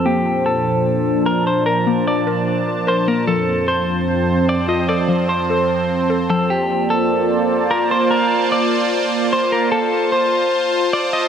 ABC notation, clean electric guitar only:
X:1
M:4/4
L:1/8
Q:1/4=149
K:Bb
V:1 name="Clean electric guitar"
G2 A4 B c | B2 d4 c B | A2 c4 d e | d2 c4- c A |
G2 A4 B c | B2 d4 c B | A2 c4 d e |]